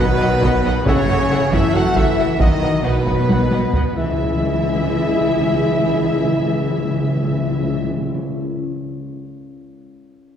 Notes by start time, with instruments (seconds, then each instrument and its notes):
Already playing: cello section B2, trombone section D#3 F#3, french horn section B3, trumpet section B4, violin section B4
0.20 double bass section B1, viola section B4 D#5, violin section F#5
0.43 double bass section B1, viola section B4 D#5, violin section F#5, taiko
0.65 double bass section B1, viola section B4 D#5, violin section F#5
0.86 double bass section F#1, cello section C#3, trombone section E3 A3, french horn section C#4, viola section A4 E5, trumpet section C#5, violin section C#5 F#5, taiko
1.09 double bass section F#1, viola section A4 E5, violin section F#5
1.31 double bass section F#1, viola section A4 E5, violin section F#5
1.52 double bass section F#1, cello section E3, french horn section E4, viola section A4 E5, trumpet section E5, violin section E5 F#5, taiko
1.74 double bass section F#1, cello section F#3, french horn section F#4, viola section A4 E5, trumpet section F#5, violin section F#5
1.95 double bass section F#1, cello section E3, french horn section E4, viola section A4 E5, trumpet section E5, violin section E5 F#5, taiko
2.18 double bass section F#1, viola section A4 E5, violin section F#5
2.39 double bass section B1, trombone section D#3 F#3, cello section D#3, french horn section D#4, viola section B4 D#5, violin section D#5 F#5, trumpet section D#5, taiko
2.62 double bass section B1, viola section B4 D#5, violin section F#5
2.84 double bass section B1, cello section B2, french horn section B3, trumpet section B4, violin section B4 F#5, viola section B4 D#5
3.06 double bass section B1, viola section B4 D#5, violin section F#5, taiko
3.29 double bass section B1, viola section B4 D#5, violin section F#5, taiko high
3.51 double bass section B1, viola section B4 D#5, violin section F#5, taiko high
3.74 double bass section B1, viola section B4 D#5, violin section F#5, taiko low
3.96 double bass section C#2, trombone section C#3 G#3, timpani C#3, cello section E3, french horn section E4, viola section E4 G#4, violin section E5, trumpet section E5
4.02 timpani C#3
4.09 timpani C#3
4.16 timpani C#3
4.23 timpani C#3
4.29 timpani C#3
4.36 timpani C#3
4.42 timpani C#3
4.49 timpani C#3
4.55 timpani C#3
4.61 timpani C#3
4.68 timpani C#3
4.74 timpani C#3
4.81 timpani C#3
4.87 timpani C#3
4.94 timpani C#3
5.00 timpani C#3
5.07 timpani C#3
5.14 timpani C#3
5.20 timpani C#3
5.26 timpani C#3
5.33 timpani C#3
5.40 timpani C#3
5.46 timpani C#3
5.53 timpani C#3
5.60 timpani C#3
5.66 timpani C#3
5.73 timpani C#3
5.80 timpani C#3
5.86 timpani C#3
5.92 timpani C#3
5.99 timpani C#3
6.05 timpani C#3
6.12 timpani C#3
6.18 timpani C#3
6.25 timpani C#3
6.31 timpani C#3
6.38 timpani C#3
6.45 timpani C#3
6.51 timpani C#3
6.58 timpani C#3
6.64 timpani C#3
6.71 timpani C#3
6.77 timpani C#3
6.84 timpani C#3
6.90 timpani C#3
6.96 timpani C#3
7.03 timpani C#3
7.09 timpani C#3
7.17 timpani C#3
7.23 timpani C#3
7.30 timpani C#3
7.37 timpani C#3
7.44 timpani C#3
7.50 timpani C#3
7.57 timpani C#3
7.63 timpani C#3
7.70 timpani C#3
7.76 timpani C#3
7.83 timpani C#3
7.89 timpani C#3
7.95 timpani C#3
8.02 timpani C#3
8.08 timpani C#3
8.14 timpani C#3